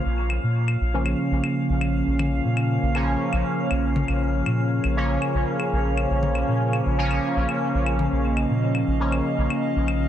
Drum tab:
CL |--x--x--x--x--x-|-x--x--x--x--x--|x--x--x--x--x--x|--x--x--x--x--x-|
T2 |----------------|-o-------------o|----------------|-o-------------o|

CL |--x--x--x--x--x-|
T2 |----------------|